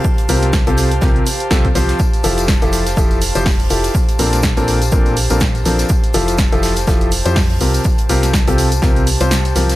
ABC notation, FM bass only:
X:1
M:4/4
L:1/16
Q:"Swing 16ths" 1/4=123
K:F
V:1 name="FM bass" clef=bass
z2 C,,3 C,,3 C,, z3 C,,2 C,, z | z2 F,,,3 F,,,3 F,,,3 F,,,3 F,,, z | z2 B,,,3 B,,,3 B,,,3 B,,,3 B,,, z | z2 F,,,3 F,,,3 F,,,3 F,,3 C,, z |
z2 C,,3 C,,3 C,,3 C,,3 C,,2 |]